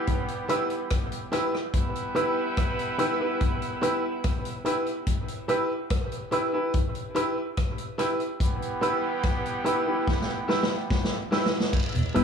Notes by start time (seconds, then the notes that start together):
Already playing: E3 G3 B3 G4
0.07 kick, closed hi-hat
0.28 closed hi-hat
0.48 E4 G4 B4 E5, closed hi-hat
0.70 muted clean electric guitar stroke, closed hi-hat
0.90 kick, cross-stick, closed hi-hat
1.12 closed hi-hat
1.32 E4 G4 B4 E5, cross-stick, closed hi-hat
1.53 muted clean electric guitar stroke, cross-stick
1.73 G3 B3 E4 B4, kick, closed hi-hat
1.95 closed hi-hat
2.15 E4 G4 B4 E5, closed hi-hat
2.57 kick, cross-stick, closed hi-hat
2.79 closed hi-hat
2.98 E4 G4 B4 E5, closed hi-hat
3.20 E4 G4 B4, muted clean electric guitar stroke
3.40 kick, closed hi-hat
3.62 closed hi-hat
3.81 E4 G4 B4 E5, closed hi-hat
4.24 kick, cross-stick, closed hi-hat
4.45 closed hi-hat
4.65 E4 G4 B4 E5, closed hi-hat
4.86 closed hi-hat
5.07 kick, closed hi-hat
5.28 closed hi-hat
5.48 E4 G4 B4 E5, closed hi-hat
5.90 kick, cross-stick, closed hi-hat
6.12 closed hi-hat
6.31 E4 G4 B4 E5, closed hi-hat
6.53 E4 G4 B4
6.74 kick, closed hi-hat
6.95 closed hi-hat
7.15 E4 G4 B4 E5, closed hi-hat
7.37 muted clean electric guitar stroke
7.57 kick, cross-stick, closed hi-hat
7.78 closed hi-hat
7.98 E4 G4 B4 E5, cross-stick, closed hi-hat
8.20 muted clean electric guitar stroke, closed hi-hat
8.40 E3 G3 B3 G4, kick, closed hi-hat
8.62 closed hi-hat
8.81 E4 G4 B4 E5, closed hi-hat
9.23 kick, cross-stick, closed hi-hat
9.46 closed hi-hat
9.64 E4 G4 B4 E5, closed hi-hat
9.86 E4 G4 B4, muted clean electric guitar stroke
10.07 kick, snare
10.22 snare
10.48 E4 G4 B4 E5, snare
10.63 snare
10.90 kick, snare
11.04 snare
11.31 E4 G4 B4 E5, snare
11.46 snare
11.60 snare
11.73 kick, crash, cowbell, vibraslap
11.95 E2 B2, closed hi-hat
12.14 E1 G3 B3 E4 G4 B4 E5, closed hi-hat